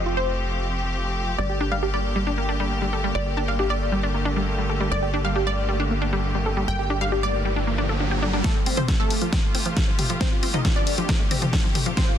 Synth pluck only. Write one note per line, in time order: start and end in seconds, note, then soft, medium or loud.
0.06 0.14 F4 medium
0.17 1.30 C5 loud
1.38 1.46 D5 loud
1.50 1.57 G4 medium
1.61 1.68 G4 medium
1.72 1.79 F5 medium
1.83 1.90 G4 medium
1.94 3.06 D5 medium
3.15 3.23 D5 loud
3.26 3.34 G4 medium
3.37 3.45 G4 medium
3.48 3.56 F5 medium
3.59 3.67 G4 medium
3.70 4.83 D5 medium
4.92 4.99 D5 loud
5.02 5.10 G4 medium
5.14 5.21 G4 medium
5.25 5.32 F5 medium
5.36 5.43 G4 medium
5.47 6.59 D5 medium
6.68 6.76 G5 loud
6.79 6.87 G4 medium
6.90 6.98 G4 medium
7.01 7.09 F5 medium
7.12 7.20 G4 medium
7.23 8.36 D5 medium
8.44 8.52 A3 medium
8.44 8.52 A4 loud
8.55 8.63 C4 medium
8.66 8.74 C4 medium
8.77 8.85 C4 medium
8.77 8.85 C5 medium
8.89 8.96 C4 medium
9.00 10.12 A3 medium
9.00 10.12 A4 medium
10.21 10.29 C4 medium
10.21 10.29 C5 loud
10.32 10.40 F4 medium
10.43 10.51 F4 medium
10.54 10.62 D#4 medium
10.54 10.62 D#5 medium
10.65 10.73 F4 medium
10.76 11.89 D4 medium
10.76 11.88 D5 loud
11.97 12.05 C4 medium
11.97 12.05 C5 loud
12.08 12.16 F4 medium